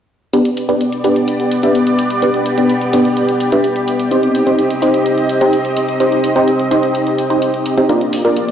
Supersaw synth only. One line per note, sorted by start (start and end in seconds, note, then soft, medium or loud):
0.33 0.66 B3 medium
0.33 0.66 D4 medium
0.33 0.66 G4 medium
0.33 0.66 B4 medium
0.33 0.66 D5 medium
0.69 0.83 B3 medium
0.69 0.83 D4 medium
0.69 0.83 G4 medium
0.69 0.83 B4 medium
0.69 0.83 D5 medium
1.04 1.60 B3 medium
1.04 1.60 D4 medium
1.04 1.60 G4 medium
1.04 1.60 B4 medium
1.04 1.60 D5 loud
1.63 1.77 B3 medium
1.63 1.77 D4 medium
1.63 1.77 G4 medium
1.63 1.77 B4 medium
1.63 1.77 E5 loud
2.22 2.55 B3 medium
2.22 2.55 D4 medium
2.22 2.55 G4 medium
2.22 2.55 B4 medium
2.22 2.55 D5 loud
2.58 2.72 B3 medium
2.58 2.72 D4 medium
2.58 2.72 G4 medium
2.58 2.72 B4 medium
2.58 2.72 D5 medium
2.93 3.49 B3 medium
2.93 3.49 D4 medium
2.93 3.49 G4 medium
2.93 3.50 B4 medium
2.93 3.49 D5 loud
3.52 3.66 B3 medium
3.52 3.66 D4 medium
3.52 3.66 G4 medium
3.52 3.66 B4 medium
3.52 3.66 E5 medium
4.11 4.44 C4 medium
4.11 4.44 D#4 medium
4.11 4.44 G4 medium
4.11 4.44 C5 medium
4.11 4.44 D#5 medium
4.47 4.61 C4 medium
4.47 4.61 D#4 medium
4.47 4.61 G4 medium
4.47 4.61 C5 medium
4.47 4.61 D#5 medium
4.82 5.38 C4 medium
4.82 5.38 D#4 medium
4.82 5.38 G4 medium
4.82 5.38 C5 medium
4.82 5.38 D#5 loud
5.41 5.55 C4 medium
5.41 5.55 D#4 medium
5.41 5.55 G4 medium
5.41 5.55 C5 medium
5.41 5.55 G5 medium
6.00 6.33 C4 medium
6.00 6.33 D#4 medium
6.00 6.33 G4 medium
6.00 6.33 C5 medium
6.00 6.33 D#5 medium
6.36 6.50 C4 medium
6.36 6.50 D#4 medium
6.36 6.50 G4 medium
6.36 6.50 C5 medium
6.36 6.50 D#5 medium
6.71 7.27 C4 medium
6.71 7.27 D#4 medium
6.71 7.27 G4 medium
6.71 7.27 C5 medium
6.71 7.27 D#5 loud
7.30 7.75 C4 medium
7.30 7.75 D#4 medium
7.30 7.75 G4 medium
7.30 7.75 C5 medium
7.30 7.75 G5 medium
7.77 7.86 C4 medium
7.77 7.86 D#4 medium
7.77 7.86 G4 medium
7.77 7.86 C5 medium
7.77 7.86 G5 medium
7.89 8.22 A#3 medium
7.89 8.22 D4 medium
7.89 8.22 F4 medium
7.89 8.22 A#4 medium
7.89 8.22 D5 medium
8.25 8.39 A#3 medium
8.25 8.39 D4 medium
8.25 8.39 F4 medium
8.25 8.39 A#4 medium
8.25 8.39 D5 loud